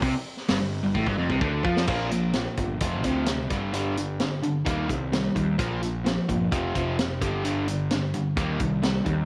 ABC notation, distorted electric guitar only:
X:1
M:4/4
L:1/16
Q:1/4=129
K:Gm
V:1 name="Distorted electric guitar" clef=bass
C, z3 G,, G,,2 G,, A,, G,, F,, C, D,2 F,2 | [B,,F,B,]2 [B,,F,]2 [B,,F,]2 [B,,F,]2 [F,,C,F,]2 [F,,C,F,]2 [F,,C,]2 [G,,D,G,]2 | [G,,D,G,]2 [G,,D,]2 [G,,D,]2 [G,,D,]2 [E,G,B,]2 [E,G,]2 [E,G,]2 [E,G,]2 | [B,,F,B,]2 [B,,F,]2 [B,,F,]2 [B,,F,]2 [F,,C,F,]2 [F,,C,F,]2 [F,,C,]2 [G,,D,G,]2 |
[G,,D,G,]2 [G,,D,]2 [G,,D,]2 [G,,D,]2 [E,G,B,]2 [E,G,]2 [E,G,]2 [E,G,]2 |]